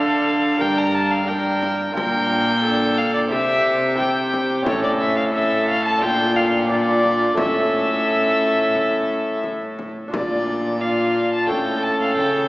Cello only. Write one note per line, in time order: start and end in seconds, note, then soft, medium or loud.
0.00 0.62 D3 medium
0.61 1.97 G2 medium
1.95 3.32 A#2 medium
3.30 4.65 C3 medium
4.66 6.02 A2 medium
6.01 7.37 A#2 medium
7.37 9.88 A2 medium
10.12 11.50 A#2 medium
11.49 12.17 A2 medium
12.18 12.48 C#3 medium